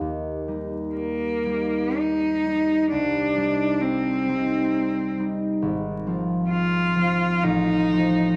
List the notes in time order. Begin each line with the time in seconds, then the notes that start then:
Already playing: A#3 D#4 G4
0.01 D#2
0.48 G3 D#4
0.95 A#3
1.46 G3 D#4
1.99 D#4
2.45 G3 D#4
2.91 C2 D4
3.37 G3 D#4
3.82 C4
4.29 G3 D#4
5.19 G3 D#4
5.62 G#1
6.06 F3 C4 F4
6.50 F4
6.96 F3 C4
7.01 F4
7.44 A1 D#4
7.93 F3 C4 F4